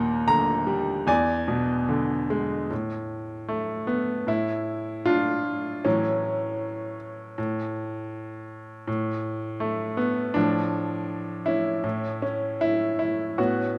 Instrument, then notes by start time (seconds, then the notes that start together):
grand piano
Already playing: D#2 A#2 G5 A#5
0.27 D3 A#5
0.67 G3
1.07 E2 D5 G#5
1.48 B2
1.89 D3
2.30 G#3
2.71 A2
3.48 A3
3.87 B3
4.27 A2 E4
5.06 D4 F4
5.85 A2 E3 F#3 C#4
7.38 A2
8.87 A2
9.60 A3
9.97 B3
10.34 A2 F3 D4
11.46 C#4 E4
11.84 A2
12.22 C#4
12.61 E4
12.99 E4
13.38 A2 B3 C#4 F#4